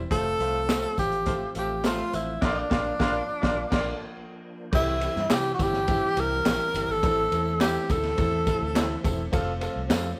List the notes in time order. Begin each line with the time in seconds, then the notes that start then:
0.11 F1 F3 A3 C4 F4 A4 C5, kick, closed hi-hat, tambourine
0.39 C2 A3 C4 F4 C5, closed hi-hat
0.68 A3 C4 F4 C5, snare, clap, closed hi-hat, tambourine
0.97 A1 A3 C4 F4 G4 C5, kick, closed hi-hat, tambourine
1.12 closed hi-hat
1.26 A3 C4 F4 A4 C5, kick, closed hi-hat, tambourine
1.55 A1 A3 C4 F4 G4 A4 C5, closed hi-hat, tambourine
1.84 A3 C4 F4 A4 C5, snare, clap, closed hi-hat, tambourine
2.12 A1 A3 C4 E4 F4 C5, closed hi-hat, tambourine
2.42 A#1 F3 A#3 D4 F4 A#4 D5, kick, snare, crash
2.70 A#1 A#3 D4 F4 A#4 D5, kick, snare
2.99 A#1 A#3 D4 F4 A#4 D5, kick, snare
3.41 A#1 A#3 D4 F4 A#4 D5, kick, snare
3.70 A#1 A#3 D4 F4 A#4 D5, kick, snare, crash
4.72 C2 E3 G3 C4 E4 G4, kick, crash, tambourine
5.01 C4 E4 G4, ride, tambourine
5.16 G2, snare
5.29 C3 C4 E4 G4, snare, clap, ride, tambourine
5.33 G4
5.54 F#4
5.59 G1 C4 E4 G4, kick, snare, ride, tambourine
5.73 snare
5.88 C4 E4 G4, kick, ride, tambourine
6.16 C2 C4 E4 G4 A#4, ride, tambourine
6.45 A#1 C4 E4 G4, snare, clap, ride, tambourine
6.60 ride
6.74 G1 C4 E4 G4, ride, tambourine
6.89 G#1 A4
7.02 A1 A3 C4 E4 A4, kick, ride, tambourine
7.31 E2 C4 E4 A4, ride, tambourine
7.61 C4 E4 G4 A4, snare, clap, ride, tambourine
7.89 D2 C4 E4 A4, kick, ride, tambourine
8.03 snare, ride
8.17 E2 C4 E4 A4, kick, ride, tambourine
8.45 C4 E4 A4, kick, ride, tambourine
8.61 D2
8.74 C4 E4 A4, snare, clap, ride, tambourine
9.03 E1 C4 E4 A4, kick, ride, tambourine
9.32 F1 F3 C4 F4 A4, kick, ride, tambourine
9.61 C4 F4 A4, ride, tambourine
9.76 C2
9.89 F2 C4 F4 A4, snare, clap, ride, tambourine